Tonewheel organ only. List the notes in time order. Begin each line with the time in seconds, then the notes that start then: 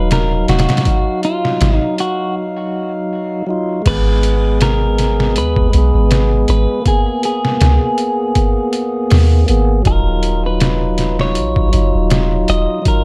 Already playing: F#3 D#4 F5
0.83 F#3
0.87 D#4
0.91 F5
3.47 F#3 D#4 F4
3.82 G#3
3.86 B3
3.90 G#4
5.70 G#3 B3
5.78 G#4
6.82 A#3
6.86 B3
6.90 G#4
9.46 A#3 B3 G#4
9.82 F#3 D#4
9.90 F4
11.69 F#3
11.73 D#4 F4
12.82 F#3 D#4
12.90 F4